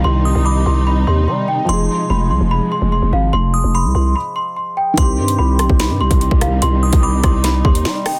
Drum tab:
HH |----------------|----------------|----------------|x--x--x-x--xx-x-|
SD |----------------|----------------|----------------|------r-o-----r-|
BD |----------------|----------------|----------------|o------o---o-o--|

HH |x--x--x-x--x--o-|
SD |------r-o---o-r-|
BD |---o--o---o-----|